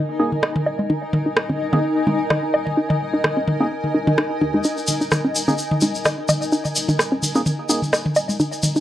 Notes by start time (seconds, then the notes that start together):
Already playing: D#4 A#4 D#5 G#5
0.19 D#1 A#3 D#4 G#4
0.32 D#1, high tom
0.43 D#5, cross-stick
0.56 high tom
0.66 D#1 D#5
0.79 low conga
0.90 D#4, high tom
1.13 D#1, high tom
1.26 D#4
1.37 D#1, cross-stick
1.49 C#4, high tom
1.60 D#1
1.73 A#3 C#4 D#4 G#4, high tom
2.07 D#1 D#4, high tom, low conga
2.20 D#1
2.30 D#5, cross-stick, high tom
2.54 D#1 D#5
2.67 high tom
2.77 D#4
2.90 high tom
3.01 D#1
3.14 D#4
3.24 D#1, cross-stick, high tom
3.37 C#4
3.48 D#1, high tom
3.60 A#3 C#4 D#4 G#4
3.84 high tom
3.94 D#1 D#4
4.07 D#1 D#4, high tom
4.18 D#4, cross-stick
4.41 D#2 D#4, high tom
4.54 D#4, low conga
4.64 D#4, shaker
4.78 shaker
4.87 D#1, high tom, shaker
5.01 D#4, shaker
5.11 D#1, cross-stick, high tom, shaker
5.25 C#4
5.35 D#1, shaker
5.48 A#3 C#4 D#4 G#4, high tom, shaker
5.58 shaker
5.71 high tom
5.81 D#1 D#4, low conga, shaker
5.95 D#1, shaker
6.05 D#5, cross-stick, high tom, shaker
6.29 D#1 D#5, high tom, shaker
6.42 shaker
6.52 D#4, shaker
6.65 high tom, shaker
6.76 D#1, shaker
6.88 D#4, high tom, shaker
6.99 D#1, cross-stick, shaker
7.12 C#4
7.23 D#1, high tom, shaker
7.35 A#3 C#4 D#4 G#4, shaker
7.46 high tom, shaker
7.69 D#1 A#3 D#4 G#4, shaker
7.82 D#1, high tom, shaker
7.93 D#5, cross-stick, shaker
8.06 high tom
8.16 D#1 D#5, shaker
8.29 low conga, shaker
8.40 D#4, high tom, shaker
8.53 shaker
8.63 D#1, high tom, shaker
8.76 D#4, shaker